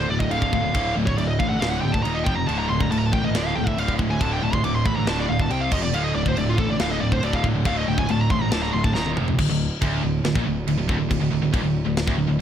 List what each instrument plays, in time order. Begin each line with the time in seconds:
Already playing: distorted electric guitar D2 A2 D3
0.09 picked electric bass D1, distorted electric guitar D2 A2, lead electric guitar D5
0.19 distorted electric guitar D2 A2, lead electric guitar D#5, kick
0.29 picked electric bass D1, distorted electric guitar D2 A2 D3, lead electric guitar F5, crash
0.42 kick
0.52 distorted electric guitar D2 A2 D3, kick
0.62 distorted electric guitar D2 A2
0.74 picked electric bass D1, distorted electric guitar D2 A2 D3, kick, crash
0.96 picked electric bass D1, distorted electric guitar D2 A2
1.06 distorted electric guitar D2 A2, lead electric guitar C#5, kick
1.18 picked electric bass D1, distorted electric guitar D2 A2, lead electric guitar D5, crash
1.28 lead electric guitar D#5
1.39 picked electric bass A1, distorted electric guitar D2 A2, lead electric guitar F5, kick
1.49 distorted electric guitar D2 A2, lead electric guitar F#5
1.60 picked electric bass D1, distorted electric guitar D2 A2 D3, lead electric guitar F5, snare, crash
1.70 lead electric guitar F#5
1.81 picked electric bass D1, distorted electric guitar D2 A2, lead electric guitar G5
1.92 distorted electric guitar D2 A2, lead electric guitar A5, kick
2.03 picked electric bass D#1, distorted electric guitar D#2 A#2 D#3, lead electric guitar A#5, crash
2.14 lead electric guitar D#5
2.24 picked electric bass F1, distorted electric guitar F2 C3 F3, lead electric guitar G5, kick
2.35 distorted electric guitar F2 C3, lead electric guitar A#5
2.47 picked electric bass D1, distorted electric guitar D2 A2 D3, lead electric guitar A5, crash
2.59 lead electric guitar A#5
2.69 picked electric bass D1, distorted electric guitar D2 A2, lead electric guitar C6
2.81 distorted electric guitar D2 A2, lead electric guitar A#5, kick
2.91 picked electric bass D1, distorted electric guitar D2 A2, lead electric guitar A5, crash
2.99 lead electric guitar A#5
3.05 lead electric guitar A5
3.13 picked electric bass A1, distorted electric guitar D2 A2, lead electric guitar G5, kick
3.24 distorted electric guitar D2 A2, lead electric guitar D#5
3.34 picked electric bass D1, distorted electric guitar D2 A2 D3, lead electric guitar D5, snare, crash
3.46 lead electric guitar F5
3.56 picked electric bass D1, distorted electric guitar D2 A2, lead electric guitar G5
3.67 distorted electric guitar D2 A2, lead electric guitar E5, kick
3.78 picked electric bass D1, distorted electric guitar D2 A2 D3, lead electric guitar F5, crash
3.88 kick
3.98 distorted electric guitar D2 A2 D3, kick
4.09 distorted electric guitar D2 A2, lead electric guitar G#5
4.20 picked electric bass D1, distorted electric guitar D2 A2 D3, lead electric guitar A5, kick, crash
4.33 lead electric guitar G5
4.42 picked electric bass D1, distorted electric guitar D2 A2, lead electric guitar A5
4.53 distorted electric guitar D2 A2, lead electric guitar C6, kick
4.64 picked electric bass D1, distorted electric guitar D2 A2, lead electric guitar D6, crash
4.75 lead electric guitar C6
4.85 picked electric bass A1, distorted electric guitar D2 A2, lead electric guitar B5, kick
4.96 distorted electric guitar D2 A2, lead electric guitar A#5
5.07 picked electric bass D1, distorted electric guitar D2 A2 D3, lead electric guitar A5, snare, crash
5.19 lead electric guitar D5
5.28 picked electric bass D1, distorted electric guitar D2 A2, lead electric guitar F5
5.40 distorted electric guitar D2 A2, lead electric guitar A5, kick
5.50 picked electric bass C2, distorted electric guitar C3 G3 C4, lead electric guitar G5, crash
5.61 lead electric guitar F5
5.71 picked electric bass F1, distorted electric guitar F2 C3 F3, lead electric guitar D#5, kick, crash
5.82 distorted electric guitar F2 C3, lead electric guitar D5
5.93 picked electric bass D1, distorted electric guitar D2 A2 D3, lead electric guitar F5, crash
6.04 lead electric guitar D#5
6.15 picked electric bass D1, distorted electric guitar D2 A2, lead electric guitar D5
6.25 distorted electric guitar D2 A2, lead electric guitar C5, kick
6.37 picked electric bass D1, distorted electric guitar D2 A2, lead electric guitar D5, crash
6.49 lead electric guitar F4
6.58 picked electric bass A1, distorted electric guitar D2 A2, lead electric guitar A4, kick
6.69 distorted electric guitar D2 A2, lead electric guitar D5
6.79 picked electric bass D1, distorted electric guitar D2 A2 D3, lead electric guitar F5, snare, crash
6.91 lead electric guitar D#5
7.01 picked electric bass D1, distorted electric guitar D2 A2, lead electric guitar D5
7.12 distorted electric guitar D2 A2, lead electric guitar C5, kick
7.22 picked electric bass D1, distorted electric guitar D2 A2 D3, lead electric guitar D5, crash
7.33 lead electric guitar F5, kick
7.43 distorted electric guitar D2 A2 D3, kick
7.54 distorted electric guitar D2 A2
7.65 picked electric bass D1, distorted electric guitar D2 A2 D3, lead electric guitar F5, kick, crash
7.78 lead electric guitar D#5
7.87 picked electric bass D1, distorted electric guitar D2 A2, lead electric guitar G5
7.98 distorted electric guitar D2 A2, lead electric guitar G#5, kick
8.09 picked electric bass D1, distorted electric guitar D2 A2, lead electric guitar A5, crash
8.20 lead electric guitar A#5
8.30 picked electric bass A1, distorted electric guitar D2 A2, lead electric guitar C6, kick
8.41 distorted electric guitar D2 A2, lead electric guitar A#5
8.52 picked electric bass D1, distorted electric guitar D2 A2 D3, lead electric guitar A5, snare, crash
8.63 lead electric guitar A#5
8.73 picked electric bass D1, distorted electric guitar D2 A2, lead electric guitar C6
8.84 distorted electric guitar D2 A2, lead electric guitar A5, kick
8.94 picked electric bass D#1, distorted electric guitar D#2 A#2 D#3, lead electric guitar A#5, snare
9.06 high tom
9.17 picked electric bass F1, distorted electric guitar F2 C3 F3, mid tom
9.28 distorted electric guitar F2 C3, floor tom
9.38 picked electric bass D1, distorted electric guitar D2, kick, crash
9.50 picked electric bass D1, distorted electric guitar D2
9.82 picked electric bass D1, distorted electric guitar D2, kick, crash
10.04 picked electric bass D1, distorted electric guitar D2
10.25 picked electric bass D1, distorted electric guitar D2, snare, crash
10.35 picked electric bass A#1, distorted electric guitar A#2, kick
10.46 picked electric bass D1, distorted electric guitar D2
10.68 picked electric bass D1, distorted electric guitar D2, crash
10.78 picked electric bass D1, distorted electric guitar D2
10.89 picked electric bass D1, distorted electric guitar D2, kick
11.00 picked electric bass D1, distorted electric guitar D2
11.11 picked electric bass D1, distorted electric guitar D2, kick, crash
11.21 picked electric bass D1, distorted electric guitar D2
11.31 picked electric bass D1, distorted electric guitar D2
11.42 picked electric bass D1, distorted electric guitar D2
11.52 picked electric bass D#1, distorted electric guitar D#2, kick, crash
11.63 picked electric bass D1, distorted electric guitar D2
11.85 picked electric bass D1, distorted electric guitar D2
11.97 snare, crash
12.07 picked electric bass D1, distorted electric guitar D2, kick
12.17 picked electric bass D1, distorted electric guitar D2
12.27 picked electric bass D1, distorted electric guitar D2